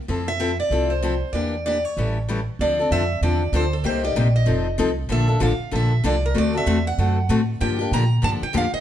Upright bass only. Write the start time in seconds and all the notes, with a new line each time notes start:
0.08 F2
0.70 C2
1.33 E2
1.97 A1
2.59 D2
2.91 F2
3.21 E2
3.52 D2
3.84 C2
4.15 A#1
4.46 F1
4.78 C2
5.09 A#1
5.40 A1
5.59 muted upright bass stroke
5.72 A#1
6.04 C2
6.35 D2
6.66 E2
6.98 F#2
7.29 A2
7.61 G2
7.91 A#2
8.23 G2
8.42 muted upright bass stroke
8.54 F2
8.73 muted upright bass stroke